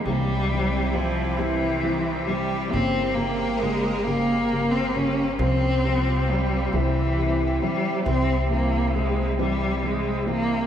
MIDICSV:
0, 0, Header, 1, 5, 480
1, 0, Start_track
1, 0, Tempo, 888889
1, 31, Time_signature, 6, 3, 24, 8
1, 5760, End_track
2, 0, Start_track
2, 0, Title_t, "Analog synth pad"
2, 0, Program_c, 0, 89
2, 39, Note_on_c, 0, 67, 100
2, 40, Note_on_c, 0, 60, 76
2, 42, Note_on_c, 0, 48, 80
2, 43, Note_on_c, 0, 64, 83
2, 1463, Note_off_c, 0, 60, 0
2, 1464, Note_off_c, 0, 48, 0
2, 1465, Note_off_c, 0, 64, 0
2, 1471, Note_on_c, 0, 58, 85
2, 1472, Note_on_c, 0, 70, 70
2, 2897, Note_off_c, 0, 67, 0
2, 2899, Note_off_c, 0, 58, 0
2, 2900, Note_off_c, 0, 70, 0
2, 2911, Note_on_c, 0, 60, 69
2, 2915, Note_on_c, 0, 48, 83
2, 2917, Note_on_c, 0, 65, 74
2, 2919, Note_on_c, 0, 67, 102
2, 3626, Note_off_c, 0, 60, 0
2, 3629, Note_off_c, 0, 65, 0
2, 3634, Note_on_c, 0, 64, 77
2, 3637, Note_on_c, 0, 60, 69
2, 5760, Note_off_c, 0, 48, 0
2, 5760, Note_off_c, 0, 60, 0
2, 5760, Note_off_c, 0, 64, 0
2, 5760, Note_off_c, 0, 67, 0
2, 5760, End_track
3, 0, Start_track
3, 0, Title_t, "Cello"
3, 0, Program_c, 1, 42
3, 24, Note_on_c, 1, 55, 103
3, 505, Note_on_c, 1, 53, 87
3, 513, Note_off_c, 1, 55, 0
3, 756, Note_on_c, 1, 52, 102
3, 764, Note_off_c, 1, 53, 0
3, 1224, Note_on_c, 1, 55, 94
3, 1232, Note_off_c, 1, 52, 0
3, 1462, Note_on_c, 1, 60, 107
3, 1470, Note_off_c, 1, 55, 0
3, 1697, Note_on_c, 1, 58, 99
3, 1705, Note_off_c, 1, 60, 0
3, 1952, Note_on_c, 1, 56, 95
3, 1960, Note_off_c, 1, 58, 0
3, 2182, Note_on_c, 1, 58, 108
3, 2190, Note_off_c, 1, 56, 0
3, 2544, Note_on_c, 1, 60, 106
3, 2552, Note_off_c, 1, 58, 0
3, 2675, Note_on_c, 1, 61, 101
3, 2683, Note_off_c, 1, 60, 0
3, 2909, Note_off_c, 1, 61, 0
3, 2913, Note_on_c, 1, 60, 106
3, 3403, Note_on_c, 1, 55, 94
3, 3412, Note_off_c, 1, 60, 0
3, 3643, Note_on_c, 1, 52, 95
3, 3651, Note_off_c, 1, 55, 0
3, 4117, Note_on_c, 1, 55, 89
3, 4125, Note_off_c, 1, 52, 0
3, 4350, Note_off_c, 1, 55, 0
3, 4353, Note_on_c, 1, 60, 97
3, 4577, Note_off_c, 1, 60, 0
3, 4594, Note_on_c, 1, 58, 95
3, 4837, Note_on_c, 1, 56, 80
3, 4845, Note_off_c, 1, 58, 0
3, 5068, Note_off_c, 1, 56, 0
3, 5071, Note_on_c, 1, 55, 90
3, 5321, Note_on_c, 1, 56, 81
3, 5330, Note_off_c, 1, 55, 0
3, 5558, Note_off_c, 1, 56, 0
3, 5561, Note_on_c, 1, 58, 101
3, 5760, Note_off_c, 1, 58, 0
3, 5760, End_track
4, 0, Start_track
4, 0, Title_t, "Felt piano"
4, 0, Program_c, 2, 0
4, 34, Note_on_c, 2, 55, 88
4, 37, Note_on_c, 2, 52, 98
4, 41, Note_on_c, 2, 60, 90
4, 174, Note_off_c, 2, 55, 0
4, 175, Note_off_c, 2, 52, 0
4, 177, Note_off_c, 2, 60, 0
4, 275, Note_on_c, 2, 52, 70
4, 277, Note_on_c, 2, 55, 72
4, 281, Note_on_c, 2, 60, 77
4, 414, Note_off_c, 2, 52, 0
4, 415, Note_off_c, 2, 55, 0
4, 417, Note_off_c, 2, 60, 0
4, 516, Note_on_c, 2, 55, 72
4, 516, Note_on_c, 2, 60, 92
4, 517, Note_on_c, 2, 52, 72
4, 655, Note_off_c, 2, 52, 0
4, 655, Note_off_c, 2, 55, 0
4, 655, Note_off_c, 2, 60, 0
4, 747, Note_on_c, 2, 55, 90
4, 748, Note_on_c, 2, 52, 94
4, 749, Note_on_c, 2, 60, 107
4, 890, Note_off_c, 2, 55, 0
4, 891, Note_off_c, 2, 52, 0
4, 891, Note_off_c, 2, 60, 0
4, 988, Note_on_c, 2, 52, 66
4, 991, Note_on_c, 2, 55, 69
4, 994, Note_on_c, 2, 60, 72
4, 1131, Note_off_c, 2, 52, 0
4, 1132, Note_off_c, 2, 55, 0
4, 1134, Note_off_c, 2, 60, 0
4, 1233, Note_on_c, 2, 52, 71
4, 1236, Note_on_c, 2, 55, 73
4, 1238, Note_on_c, 2, 60, 84
4, 1374, Note_off_c, 2, 52, 0
4, 1375, Note_off_c, 2, 55, 0
4, 1376, Note_off_c, 2, 60, 0
4, 1477, Note_on_c, 2, 49, 90
4, 1478, Note_on_c, 2, 55, 91
4, 1479, Note_on_c, 2, 58, 101
4, 1616, Note_off_c, 2, 49, 0
4, 1616, Note_off_c, 2, 55, 0
4, 1617, Note_off_c, 2, 58, 0
4, 1708, Note_on_c, 2, 49, 69
4, 1710, Note_on_c, 2, 55, 68
4, 1712, Note_on_c, 2, 58, 82
4, 1852, Note_off_c, 2, 49, 0
4, 1852, Note_off_c, 2, 55, 0
4, 1854, Note_off_c, 2, 58, 0
4, 1956, Note_on_c, 2, 49, 83
4, 1957, Note_on_c, 2, 55, 70
4, 1959, Note_on_c, 2, 58, 82
4, 2096, Note_off_c, 2, 49, 0
4, 2096, Note_off_c, 2, 55, 0
4, 2097, Note_off_c, 2, 58, 0
4, 2196, Note_on_c, 2, 49, 95
4, 2199, Note_on_c, 2, 55, 89
4, 2199, Note_on_c, 2, 58, 106
4, 2336, Note_off_c, 2, 49, 0
4, 2337, Note_off_c, 2, 55, 0
4, 2337, Note_off_c, 2, 58, 0
4, 2441, Note_on_c, 2, 49, 69
4, 2441, Note_on_c, 2, 55, 55
4, 2445, Note_on_c, 2, 58, 76
4, 2578, Note_off_c, 2, 49, 0
4, 2578, Note_off_c, 2, 55, 0
4, 2580, Note_off_c, 2, 58, 0
4, 2676, Note_on_c, 2, 49, 74
4, 2681, Note_on_c, 2, 55, 74
4, 2683, Note_on_c, 2, 58, 91
4, 2816, Note_off_c, 2, 49, 0
4, 2818, Note_off_c, 2, 55, 0
4, 2819, Note_off_c, 2, 58, 0
4, 2912, Note_on_c, 2, 53, 94
4, 2913, Note_on_c, 2, 55, 77
4, 2914, Note_on_c, 2, 60, 100
4, 3054, Note_off_c, 2, 53, 0
4, 3054, Note_off_c, 2, 55, 0
4, 3055, Note_off_c, 2, 60, 0
4, 3156, Note_on_c, 2, 53, 76
4, 3159, Note_on_c, 2, 55, 66
4, 3160, Note_on_c, 2, 60, 77
4, 3296, Note_off_c, 2, 53, 0
4, 3297, Note_off_c, 2, 55, 0
4, 3298, Note_off_c, 2, 60, 0
4, 3396, Note_on_c, 2, 53, 67
4, 3396, Note_on_c, 2, 55, 73
4, 3400, Note_on_c, 2, 60, 85
4, 3536, Note_off_c, 2, 53, 0
4, 3536, Note_off_c, 2, 55, 0
4, 3538, Note_off_c, 2, 60, 0
4, 3637, Note_on_c, 2, 52, 85
4, 3638, Note_on_c, 2, 60, 101
4, 3639, Note_on_c, 2, 55, 85
4, 3776, Note_off_c, 2, 52, 0
4, 3777, Note_off_c, 2, 55, 0
4, 3777, Note_off_c, 2, 60, 0
4, 3880, Note_on_c, 2, 52, 62
4, 3881, Note_on_c, 2, 55, 57
4, 3881, Note_on_c, 2, 60, 70
4, 4018, Note_off_c, 2, 52, 0
4, 4018, Note_off_c, 2, 60, 0
4, 4019, Note_off_c, 2, 55, 0
4, 4116, Note_on_c, 2, 52, 73
4, 4121, Note_on_c, 2, 55, 71
4, 4123, Note_on_c, 2, 60, 77
4, 4256, Note_off_c, 2, 52, 0
4, 4258, Note_off_c, 2, 55, 0
4, 4259, Note_off_c, 2, 60, 0
4, 4349, Note_on_c, 2, 52, 90
4, 4352, Note_on_c, 2, 55, 76
4, 4354, Note_on_c, 2, 60, 102
4, 4492, Note_off_c, 2, 52, 0
4, 4494, Note_off_c, 2, 55, 0
4, 4495, Note_off_c, 2, 60, 0
4, 4593, Note_on_c, 2, 52, 67
4, 4593, Note_on_c, 2, 55, 65
4, 4595, Note_on_c, 2, 60, 76
4, 4734, Note_off_c, 2, 55, 0
4, 4735, Note_off_c, 2, 52, 0
4, 4735, Note_off_c, 2, 60, 0
4, 4832, Note_on_c, 2, 52, 74
4, 4833, Note_on_c, 2, 55, 70
4, 4834, Note_on_c, 2, 60, 78
4, 4974, Note_off_c, 2, 52, 0
4, 4974, Note_off_c, 2, 55, 0
4, 4975, Note_off_c, 2, 60, 0
4, 5067, Note_on_c, 2, 52, 98
4, 5072, Note_on_c, 2, 60, 103
4, 5073, Note_on_c, 2, 55, 91
4, 5211, Note_off_c, 2, 52, 0
4, 5214, Note_off_c, 2, 55, 0
4, 5214, Note_off_c, 2, 60, 0
4, 5308, Note_on_c, 2, 52, 58
4, 5309, Note_on_c, 2, 55, 62
4, 5314, Note_on_c, 2, 60, 78
4, 5452, Note_off_c, 2, 52, 0
4, 5452, Note_off_c, 2, 55, 0
4, 5455, Note_off_c, 2, 60, 0
4, 5542, Note_on_c, 2, 52, 79
4, 5544, Note_on_c, 2, 55, 69
4, 5546, Note_on_c, 2, 60, 81
4, 5689, Note_off_c, 2, 52, 0
4, 5690, Note_off_c, 2, 55, 0
4, 5690, Note_off_c, 2, 60, 0
4, 5760, End_track
5, 0, Start_track
5, 0, Title_t, "Upright bass"
5, 0, Program_c, 3, 32
5, 30, Note_on_c, 3, 36, 92
5, 1451, Note_off_c, 3, 36, 0
5, 1475, Note_on_c, 3, 31, 98
5, 2894, Note_off_c, 3, 31, 0
5, 2911, Note_on_c, 3, 36, 109
5, 3611, Note_off_c, 3, 36, 0
5, 3632, Note_on_c, 3, 36, 88
5, 4092, Note_off_c, 3, 36, 0
5, 4353, Note_on_c, 3, 36, 107
5, 5760, Note_off_c, 3, 36, 0
5, 5760, End_track
0, 0, End_of_file